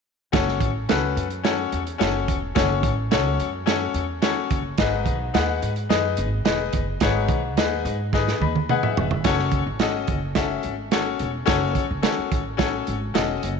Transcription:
0.32 F#1 C#4 F#4 A4 C#5, kick, snare, closed hi-hat
0.48 snare
0.60 A1, kick, closed hi-hat
0.89 C#2 C#4 F#4 A4 B4, snare, closed hi-hat
1.16 F#2, closed hi-hat
1.30 closed hi-hat
1.43 C#4 F#4 A4 C#5, snare, closed hi-hat
1.72 E2, closed hi-hat
1.87 closed hi-hat
1.98 F#1 C#4 F#4 A4 C#5, snare, closed hi-hat
2.28 E1, kick, closed hi-hat
2.55 F#1 C#4 F#4 A4 C#5, kick, snare, closed hi-hat
2.83 A1, kick, closed hi-hat
3.11 C#2 C#4 F#4 A4 C#5, snare, closed hi-hat
3.39 F#2, closed hi-hat
3.66 C#4 F#4 A4 C#5, snare, closed hi-hat
3.94 E2, closed hi-hat
4.22 C#4 F#4 A4 C#5, snare, closed hi-hat
4.50 F#1, kick, closed hi-hat
4.78 G#1 G#2 D#4 G#4 B4 D#5, kick, snare, closed hi-hat
5.06 B1, kick, closed hi-hat
5.34 D#2 D#4 G#4 B4 F#5, snare, closed hi-hat
5.62 G#2, closed hi-hat
5.76 closed hi-hat
5.89 F#2 D#4 G#4 B4 D#5, snare, closed hi-hat
6.17 G#1, closed hi-hat
6.45 E1 D#4 G#4 B4 D#5, snare, closed hi-hat
6.73 F#1, kick, closed hi-hat
7.00 G#1 G#2 D#4 G#4 B4 C#5, kick, snare, closed hi-hat
7.28 B1, kick, closed hi-hat
7.57 D#2 D#4 G#4 B4 D#5, snare, closed hi-hat
7.85 G#2, closed hi-hat
8.13 D#4 G#4 B4 D#5, kick, snare
8.28 snare
8.40 D#2 B5, high tom
8.56 high tom
8.69 D#4 G#4 B4 F#5 G#5, mid tom
8.83 E5, mid tom
8.97 E1, floor tom
9.11 floor tom
9.24 F#1 C#4 F#4 A4 C#5, kick, snare, closed hi-hat
9.39 snare
9.51 kick, closed hi-hat
9.67 A1
9.79 G#1 C#4 F#4 A4 D#5, snare, closed hi-hat
10.07 F#1, kick, closed hi-hat
10.35 C#4 F#4 A4 E5, kick, snare, closed hi-hat
10.63 G#1, closed hi-hat
10.91 C#4 F#4 A4 C#5, snare, closed hi-hat
11.19 E1, closed hi-hat
11.46 F#1 C#4 F#4 A4 C#5, kick, snare, closed hi-hat
11.75 kick, closed hi-hat
11.91 F#1
12.02 C#4 F#4 A4 C#5, snare, closed hi-hat
12.19 muted upright bass stroke
12.32 A1, kick, closed hi-hat
12.57 C#4 F#4 A4 C#5, kick, snare, closed hi-hat
12.87 G#1, closed hi-hat
13.14 E1 C#4 F#4 A4 D#5, snare, closed hi-hat
13.43 F#1, closed hi-hat

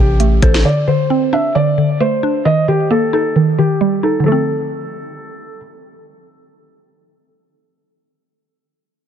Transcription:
Already playing: A1 C3 C4 G4 C5
0.20 A3, closed hi-hat
0.42 A1 A4 C5, kick, closed hi-hat
0.54 snare
0.65 D3 D5
0.88 D3 C5
1.10 C4
1.33 D4 E5
1.55 D3 D5
1.78 D3
2.00 A3 C5
2.23 D4
2.45 D#3 D#5
2.68 D#3 G4
2.91 A#3 A4
3.13 D#4 A4
3.36 D#3
3.58 D#3 G4
3.81 G3
4.03 D#4 A4
4.20 D3
4.24 F3 A4
4.28 A3 C4

